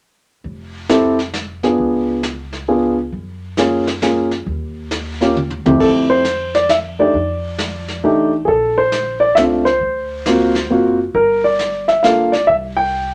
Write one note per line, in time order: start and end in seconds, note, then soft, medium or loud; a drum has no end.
0.44 1.75 F1 medium
0.44 brush sweep soft
0.44 kick soft
0.89 1.16 C4 soft
0.89 1.17 E4 medium
0.89 1.16 G4 soft
0.89 1.17 A4 medium
0.89 snare soft
0.89 hi-hat pedal soft
1.19 snare soft
1.34 snare soft
1.34 hi-hat pedal soft
1.63 2.20 B3 soft
1.63 2.21 D4 soft
1.63 2.21 F4 soft
1.63 2.21 G#4 soft
1.63 snare soft
1.78 3.08 C#2 medium
1.78 brush sweep soft
1.78 kick soft
2.23 snare soft
2.23 hi-hat pedal soft
2.53 snare soft
2.68 2.95 B3 soft
2.68 2.95 D4 soft
2.68 2.95 F4 soft
2.68 2.95 G#4 soft
3.12 4.43 F#2 medium
3.12 brush sweep soft
3.12 kick soft
3.57 3.85 A#3 soft
3.57 3.85 C#4 soft
3.57 3.85 F4 soft
3.57 3.85 G#4 soft
3.57 snare soft
3.57 hi-hat pedal soft
3.87 snare soft
4.02 4.29 A#3 soft
4.02 4.29 C#4 soft
4.02 4.29 F4 soft
4.02 4.29 G#4 soft
4.02 snare soft
4.02 hi-hat pedal soft
4.31 snare soft
4.46 5.61 D#2 medium
4.46 brush sweep soft
4.46 kick soft
4.91 snare soft
4.91 hi-hat pedal soft
5.21 5.34 A#3 soft
5.21 5.35 C#4 soft
5.21 5.35 F4 soft
5.21 5.35 G4 medium
5.21 snare soft
5.36 mid tom soft
5.50 mid tom soft
5.65 5.79 D#2 medium
5.65 6.22 F2 soft
5.65 6.22 A3 soft
5.65 6.22 C4 soft
5.65 6.22 E4 soft
5.65 6.22 G4 medium
5.65 mid tom soft
5.80 7.10 F2 medium
5.80 5.87 A4 medium
5.80 brush sweep soft
5.80 kick medium
5.80 ride medium
6.10 6.56 C5 medium
6.25 snare soft
6.25 hi-hat pedal soft
6.55 6.69 D5 medium
6.55 snare soft
6.69 6.77 E5 medium
6.69 snare soft
6.69 hi-hat pedal soft
6.99 7.12 A3 soft
6.99 7.13 D4 soft
6.99 7.13 D#4 soft
6.99 7.13 G4 medium
6.99 8.29 D5 medium
7.14 7.99 F2 medium
7.14 brush sweep soft
7.14 kick soft
7.58 snare soft
7.58 hi-hat pedal medium
7.88 snare soft
8.03 8.45 A1 medium
8.03 8.30 A3 medium
8.03 8.30 D4 soft
8.03 8.30 D#4 soft
8.03 8.31 G4 medium
8.45 9.33 A#1 medium
8.45 8.48 G#4 medium
8.45 8.78 A4 medium
8.45 brush sweep soft
8.45 kick soft
8.78 9.23 C5 medium
8.92 snare soft
8.92 hi-hat pedal soft
9.20 9.35 D5 medium
9.35 9.78 C#2 medium
9.35 9.64 A3 soft
9.35 9.64 C4 soft
9.35 9.64 D4 soft
9.35 9.64 F4 medium
9.35 9.42 E5 medium
9.35 snare soft
9.35 hi-hat pedal soft
9.65 10.95 C5 medium
9.65 snare soft
9.81 10.66 D2 medium
9.81 brush sweep soft
9.81 kick soft
10.26 10.53 A#3 medium
10.26 10.53 C4 soft
10.26 10.53 F4 soft
10.26 10.53 F#4 medium
10.26 snare soft
10.26 hi-hat pedal soft
10.55 snare soft
10.70 11.11 F#1 medium
10.70 10.97 A#3 soft
10.70 10.97 C4 soft
10.70 10.97 F4 soft
10.70 10.97 F#4 medium
11.14 12.44 G1 medium
11.14 11.42 A#4 medium
11.14 brush sweep soft
11.14 kick soft
11.44 11.90 D5 medium
11.59 snare soft
11.59 hi-hat pedal soft
11.88 12.04 E5 medium
11.88 snare soft
12.03 12.30 A#3 soft
12.03 12.31 D4 soft
12.03 12.31 F4 soft
12.03 12.31 A4 soft
12.03 12.31 F5 medium
12.03 snare soft
12.03 hi-hat pedal soft
12.32 12.47 D5 medium
12.32 snare soft
12.47 13.14 C2 medium
12.47 12.54 E5 medium
12.47 brush sweep soft
12.47 kick soft
12.77 13.14 G5 medium